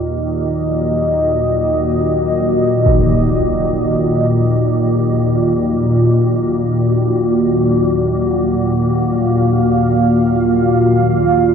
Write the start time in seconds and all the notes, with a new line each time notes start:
Already playing: D#2 A#2 A#3 F4 F#4 D#5
2.86 impact
7.16 F5